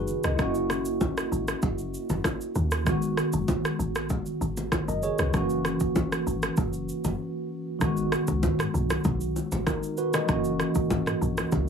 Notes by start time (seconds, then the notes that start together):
Already playing: F#1 D#3 G#3 B3 D#4 F#4 G#4 B4
0.08 shaker
0.24 C#2 A#4 D#5, cross-stick, shaker
0.37 F#1 A#3 C#4 E4, kick, cross-stick, low conga, shaker
0.42 F#4
0.55 shaker
0.70 cross-stick, low bongo, shaker
0.85 shaker
1.01 kick, high bongo, low bongo, low conga, shaker
1.17 cross-stick, shaker
1.32 G#1, shaker
1.48 cross-stick, shaker
1.62 F#1, kick, low conga, shaker
1.78 shaker
1.94 shaker
2.10 F#1, low bongo, shaker
2.24 kick, cross-stick, high bongo, shaker
2.41 shaker
2.55 D#2, shaker
2.71 cross-stick, shaker
2.84 G#1 D#3 G#3 B3, kick, cross-stick, low conga, shaker
2.89 F#4
3.02 shaker
3.17 cross-stick, low bongo, shaker
3.33 F#1, shaker
3.48 kick, high bongo, low bongo, low conga, shaker
3.65 cross-stick, shaker
3.79 G#1, shaker
3.95 cross-stick, shaker
4.10 kick, low conga, shaker
4.26 shaker
4.41 G#1, shaker
4.57 low bongo, shaker
4.72 kick, cross-stick, high bongo, shaker
4.88 F#1 A#4 D#5, shaker
5.03 G#4 C#5, shaker
5.19 C#2 F#4 B4, cross-stick, shaker
5.31 F#1 E3 G#3 C#4, kick, cross-stick, low conga, shaker
5.36 A#3 F#4
5.50 shaker
5.65 cross-stick, low bongo, shaker
5.80 kick, shaker
5.96 kick, high bongo, low bongo, low conga, shaker
6.12 cross-stick, shaker
6.27 G#1, shaker
6.43 cross-stick, shaker
6.57 F#1, kick, low conga, shaker
6.73 shaker
6.89 shaker
7.04 F#1, low bongo, shaker
7.79 G#1 D#3 G#3 B3, kick, cross-stick, low conga, shaker
7.84 F#4
7.97 shaker
8.12 cross-stick, low bongo, shaker
8.27 C#2, kick, shaker
8.43 kick, mid tom, high bongo, low bongo, low conga, shaker
8.59 cross-stick, mid tom, shaker
8.74 B1, shaker
8.90 cross-stick, high bongo, shaker
9.04 B1, kick, low conga, shaker
9.21 shaker
9.36 high bongo, shaker
9.52 G#1, low bongo, shaker
9.67 D#4 A#4, kick, cross-stick, high bongo, shaker
9.83 shaker
9.97 F#4 B4, shaker
10.14 A#4 D#5, cross-stick, low bongo, shaker
10.26 F#1 E3 A#3 C#4, kick, cross-stick, low conga, shaker
10.31 F#4
10.44 shaker
10.60 cross-stick, low bongo, shaker
10.75 G#1, kick, shaker
10.90 kick, mid tom, high bongo, low bongo, low conga, shaker
11.06 cross-stick, mid tom, shaker
11.22 A#1, shaker
11.37 cross-stick, high bongo, shaker
11.52 C#2, kick, low conga, shaker